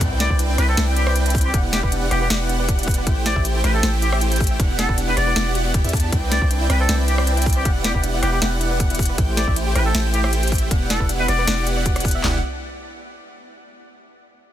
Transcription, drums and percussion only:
0.01 kick, closed hi-hat
0.20 snare, closed hi-hat
0.30 kick
0.39 closed hi-hat
0.58 cross-stick, closed hi-hat
0.77 snare, closed hi-hat
0.96 closed hi-hat
1.07 cross-stick
1.16 closed hi-hat
1.26 closed hi-hat
1.30 closed hi-hat
1.35 kick, closed hi-hat, open hi-hat
1.41 closed hi-hat
1.54 kick, closed hi-hat
1.73 snare, closed hi-hat
1.83 kick
1.92 closed hi-hat
2.11 cross-stick, closed hi-hat
2.30 snare, closed hi-hat
2.49 closed hi-hat
2.69 kick, closed hi-hat
2.79 closed hi-hat
2.83 closed hi-hat
2.88 kick, closed hi-hat, open hi-hat
2.94 closed hi-hat
3.07 kick, closed hi-hat
3.26 snare, closed hi-hat
3.36 kick
3.45 closed hi-hat
3.64 cross-stick, closed hi-hat
3.83 snare, closed hi-hat
4.02 closed hi-hat
4.12 cross-stick
4.21 closed hi-hat
4.32 closed hi-hat
4.36 closed hi-hat
4.40 kick, closed hi-hat, open hi-hat
4.47 closed hi-hat
4.60 kick, closed hi-hat
4.79 snare, closed hi-hat
4.89 kick
4.98 closed hi-hat
5.17 cross-stick, closed hi-hat
5.36 snare, closed hi-hat
5.55 closed hi-hat
5.74 kick, closed hi-hat
5.84 closed hi-hat
5.89 closed hi-hat
5.93 kick, closed hi-hat, open hi-hat
6.00 closed hi-hat
6.12 kick, closed hi-hat
6.32 snare, closed hi-hat
6.42 kick
6.51 closed hi-hat
6.70 cross-stick, closed hi-hat
6.89 snare, closed hi-hat
7.08 closed hi-hat
7.18 cross-stick
7.27 closed hi-hat
7.37 closed hi-hat
7.42 closed hi-hat
7.46 kick, closed hi-hat, open hi-hat
7.53 closed hi-hat
7.65 kick, closed hi-hat
7.84 snare, closed hi-hat
7.95 kick
8.04 closed hi-hat
8.23 cross-stick, closed hi-hat
8.42 snare, closed hi-hat
8.61 closed hi-hat
8.80 kick, closed hi-hat
8.90 closed hi-hat
8.95 closed hi-hat
8.99 kick, closed hi-hat, open hi-hat
9.05 closed hi-hat
9.18 kick, closed hi-hat
9.37 snare, closed hi-hat
9.48 kick
9.56 closed hi-hat
9.76 cross-stick, closed hi-hat
9.95 snare, closed hi-hat
10.14 closed hi-hat
10.24 cross-stick
10.33 closed hi-hat
10.43 closed hi-hat
10.48 closed hi-hat
10.52 kick, closed hi-hat, open hi-hat
10.58 closed hi-hat
10.71 kick, closed hi-hat
10.90 snare, closed hi-hat
11.00 kick
11.09 closed hi-hat
11.28 cross-stick, closed hi-hat
11.47 snare, closed hi-hat
11.67 closed hi-hat
11.86 kick, closed hi-hat
11.96 cross-stick, closed hi-hat
12.00 closed hi-hat
12.05 kick, closed hi-hat, open hi-hat
12.11 closed hi-hat
12.24 snare, clap, floor tom

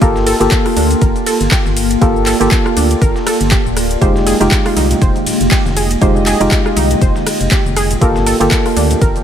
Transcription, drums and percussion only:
0.02 kick, closed hi-hat, shaker
0.16 snare, shaker
0.27 closed hi-hat, open hi-hat, ride, shaker
0.41 closed hi-hat, shaker
0.51 kick, snare, clap, closed hi-hat, shaker
0.66 cross-stick, open hi-hat, shaker
0.77 closed hi-hat, open hi-hat, ride, shaker
0.91 closed hi-hat, shaker
1.01 kick, closed hi-hat, shaker
1.16 closed hi-hat, shaker
1.26 closed hi-hat, open hi-hat, ride, shaker
1.41 snare, closed hi-hat, shaker
1.51 kick, snare, clap, closed hi-hat, open hi-hat, shaker
1.66 snare, shaker
1.77 closed hi-hat, open hi-hat, ride, shaker
1.91 closed hi-hat, shaker
2.02 kick, closed hi-hat, shaker
2.16 shaker
2.26 snare, clap, closed hi-hat, open hi-hat, ride, shaker
2.41 closed hi-hat, shaker
2.51 kick, snare, clap, closed hi-hat, shaker
2.66 cross-stick, shaker
2.77 closed hi-hat, open hi-hat, ride, shaker
2.91 closed hi-hat, shaker
3.02 kick, closed hi-hat, shaker
3.16 snare, shaker
3.27 cross-stick, closed hi-hat, open hi-hat, ride, shaker
3.41 closed hi-hat, shaker
3.51 kick, snare, clap, closed hi-hat, shaker
3.66 shaker
3.77 cross-stick, closed hi-hat, open hi-hat, ride, shaker
3.91 closed hi-hat, shaker
4.01 kick, closed hi-hat, high conga, shaker
4.16 snare, low conga, shaker
4.27 closed hi-hat, open hi-hat, ride, shaker
4.41 closed hi-hat, high conga, shaker
4.51 kick, snare, clap, closed hi-hat, shaker
4.66 cross-stick, open hi-hat, shaker
4.76 closed hi-hat, open hi-hat, ride, high conga, shaker
4.91 closed hi-hat, low conga, shaker
5.02 kick, closed hi-hat, shaker
5.16 closed hi-hat, high conga, shaker
5.27 closed hi-hat, open hi-hat, ride, low conga, shaker
5.41 snare, closed hi-hat, shaker
5.51 kick, snare, clap, closed hi-hat, open hi-hat, shaker
5.66 snare, high conga, shaker
5.77 closed hi-hat, open hi-hat, ride, shaker
5.91 closed hi-hat, shaker
6.01 kick, closed hi-hat, high conga, shaker
6.15 low conga, shaker
6.26 snare, clap, closed hi-hat, open hi-hat, ride, shaker
6.41 closed hi-hat, high conga, shaker
6.51 kick, snare, clap, closed hi-hat, shaker
6.66 cross-stick, shaker
6.76 closed hi-hat, open hi-hat, ride, high conga, shaker
6.91 closed hi-hat, low conga, shaker
7.01 kick, closed hi-hat, shaker
7.15 snare, high conga, shaker
7.27 cross-stick, closed hi-hat, open hi-hat, ride, shaker
7.41 closed hi-hat, shaker
7.51 kick, snare, clap, closed hi-hat, shaker
7.66 high conga, shaker
7.77 cross-stick, closed hi-hat, open hi-hat, ride, shaker
7.91 closed hi-hat, low conga, shaker
8.01 kick, closed hi-hat, high conga, shaker
8.15 snare, low conga, shaker
8.27 closed hi-hat, open hi-hat, ride, shaker
8.41 closed hi-hat, high conga, shaker
8.51 kick, snare, clap, closed hi-hat, shaker
8.66 cross-stick, open hi-hat, shaker
8.77 closed hi-hat, open hi-hat, ride, high conga, shaker
8.91 closed hi-hat, low conga, shaker
9.01 kick, closed hi-hat, shaker
9.16 closed hi-hat, high conga, shaker

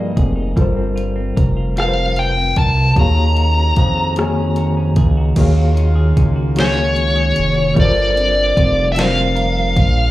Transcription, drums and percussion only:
0.17 kick, closed hi-hat
0.57 kick, closed hi-hat
0.98 closed hi-hat
1.37 kick, closed hi-hat
1.77 cross-stick, closed hi-hat
2.16 closed hi-hat
2.56 kick, closed hi-hat
2.96 kick, closed hi-hat
3.37 closed hi-hat
3.76 kick, closed hi-hat
4.16 cross-stick, closed hi-hat
4.56 closed hi-hat
4.96 kick, closed hi-hat
5.36 kick, closed hi-hat, crash
5.77 closed hi-hat
6.17 kick, closed hi-hat
6.56 snare, closed hi-hat
6.96 closed hi-hat
7.36 closed hi-hat
7.76 kick, closed hi-hat
8.17 closed hi-hat
8.57 kick, closed hi-hat
8.96 snare, closed hi-hat
9.37 closed hi-hat
9.77 kick, closed hi-hat

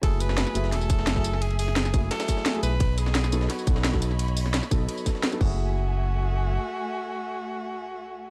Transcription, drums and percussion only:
0.03 kick, closed hi-hat, ride
0.20 closed hi-hat, ride, tambourine
0.29 snare
0.38 snare, closed hi-hat, ride
0.47 snare, tambourine
0.55 closed hi-hat, ride, tambourine
0.64 snare
0.72 snare, closed hi-hat, ride
0.81 tambourine
0.90 kick, closed hi-hat, ride, tambourine
0.99 snare
1.07 snare, closed hi-hat, ride
1.16 kick, snare
1.24 closed hi-hat, ride, tambourine
1.33 snare
1.42 closed hi-hat, ride
1.51 ride
1.59 closed hi-hat, open hi-hat, tambourine
1.68 snare
1.76 snare, closed hi-hat, ride
1.85 snare, tambourine
1.94 kick, closed hi-hat, ride, tambourine
2.11 snare, closed hi-hat, ride
2.20 snare, ride, tambourine
2.28 kick, snare, closed hi-hat, ride, tambourine
2.37 snare
2.46 snare, closed hi-hat, ride
2.55 ride
2.63 closed hi-hat, ride, tambourine
2.80 kick, closed hi-hat, ride
2.98 closed hi-hat, ride, tambourine
3.06 snare
3.15 snare, closed hi-hat, ride
3.24 snare, tambourine
3.32 closed hi-hat, ride, tambourine
3.41 snare
3.50 snare, closed hi-hat, ride
3.59 tambourine
3.67 kick, closed hi-hat, ride, tambourine
3.76 snare
3.84 snare, closed hi-hat, ride
3.93 kick, snare
4.02 closed hi-hat, ride, tambourine
4.11 snare
4.19 closed hi-hat, ride
4.28 ride
4.37 closed hi-hat, open hi-hat, tambourine
4.46 snare
4.54 snare, closed hi-hat, ride
4.63 snare, tambourine
4.71 kick, closed hi-hat, ride, tambourine
4.89 closed hi-hat, ride
4.98 tambourine
5.06 kick, snare, closed hi-hat, ride, tambourine
5.15 snare
5.23 snare, closed hi-hat, ride
5.32 ride, tambourine
5.41 kick, crash

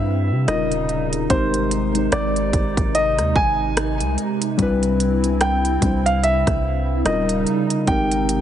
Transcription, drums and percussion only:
0.48 cross-stick, closed hi-hat
0.72 closed hi-hat
0.89 closed hi-hat
1.13 closed hi-hat
1.30 kick, closed hi-hat
1.54 closed hi-hat
1.71 closed hi-hat
1.95 closed hi-hat
2.12 cross-stick, closed hi-hat
2.36 closed hi-hat
2.53 kick, closed hi-hat
2.77 kick, closed hi-hat
2.95 closed hi-hat
3.19 cross-stick, closed hi-hat
3.36 kick
3.77 cross-stick, closed hi-hat
4.00 closed hi-hat
4.18 closed hi-hat
4.42 closed hi-hat
4.59 kick, closed hi-hat
4.83 closed hi-hat
5.00 closed hi-hat
5.24 closed hi-hat
5.41 cross-stick, closed hi-hat
5.65 closed hi-hat
5.82 kick, closed hi-hat
6.06 closed hi-hat
6.24 closed hi-hat
6.47 kick, cross-stick, closed hi-hat
7.06 cross-stick, closed hi-hat
7.29 closed hi-hat
7.47 closed hi-hat
7.70 closed hi-hat
7.87 kick, closed hi-hat
8.12 closed hi-hat
8.29 closed hi-hat

